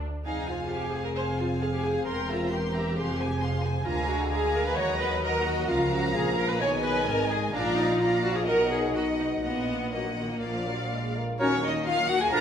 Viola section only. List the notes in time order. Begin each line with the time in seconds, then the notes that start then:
0.26 D#4
0.49 F4
0.71 G4
0.93 G#4
1.05 A#4
1.17 C5
1.40 F4
1.61 G#4
1.73 G4
1.85 G#4
2.07 A#4
2.30 F4
2.52 G4
3.85 F4
4.08 F#4
4.32 G#4
4.55 A#4
4.66 B4
4.76 C#5
5.00 B4
5.23 A#4
5.44 F#4
5.68 F4
5.92 F#4
6.15 G#4
6.37 A#4
6.49 B4
6.61 C#5
6.83 B4
7.08 A#4
7.31 G#4
7.54 D4
7.78 D#4
8.01 F4
8.24 F#4
8.36 G#4
8.48 A#4
8.72 G#4
8.96 F#4
9.19 D#4
9.44 B3
9.93 A#3
11.41 A#3 D#4
11.52 F#3 F#4
11.64 A#3 D#4
11.74 F#3 F#4
11.86 A#3 D#4
11.98 F#3 F#4
12.09 A#3 D#4
12.20 F#3 F#4
12.32 D3 D4